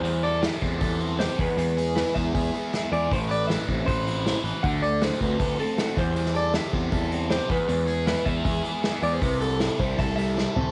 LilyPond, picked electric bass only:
\new Staff \with { instrumentName = "Picked electric bass" } { \clef bass \time 4/4 \key c \lydian \tempo 4 = 157 e,4. e,8 e,4. e,16 r16 | e,4. e,8 e,8 r4 e,8 | a,,4. a,,8 a,,4. a,,16 r16 | d,4. d,8 d,8 r4 e,8~ |
e,4. e,8 e,4. e,16 r16 | e,4. e,8 e,8 r4 e,8 | c,4. c,8 c,4. c16 r16 | }